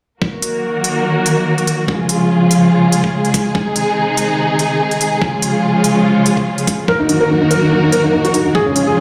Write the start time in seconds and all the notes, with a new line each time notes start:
0.22 D#3 F#3 A#3 F#4 A#4, kick
0.42 closed hi-hat
0.84 closed hi-hat
1.26 closed hi-hat
1.58 closed hi-hat
1.67 closed hi-hat
1.88 C#3 F3 G#3 F4 G#4, kick
2.09 closed hi-hat
2.51 closed hi-hat
2.92 closed hi-hat
3.04 kick
3.25 closed hi-hat
3.34 kick, closed hi-hat
3.55 C3 D#3 D#4, kick
3.76 closed hi-hat
4.17 closed hi-hat
4.59 closed hi-hat
4.91 closed hi-hat
5.01 closed hi-hat
5.22 C#3 F3 G#3 F4, kick
5.42 closed hi-hat
5.84 closed hi-hat
6.26 closed hi-hat
6.37 kick
6.58 closed hi-hat
6.67 kick, closed hi-hat
6.88 D#3 F#3 A#3 F#4 A#4, kick
7.00 D#4
7.09 D#4, closed hi-hat
7.20 A#4
7.30 D#4
7.41 D#4
7.51 A#4, closed hi-hat
7.62 D#4
7.72 D#4
7.83 D#4
7.92 A#4, closed hi-hat
8.04 D#4
8.13 D#4
8.25 F#4, closed hi-hat
8.34 D#4, closed hi-hat
8.46 D#4
8.55 C#3 F3 G#3 F4 G#4, kick
8.66 C#4
8.76 C#4, closed hi-hat
8.87 G#4
8.97 C#4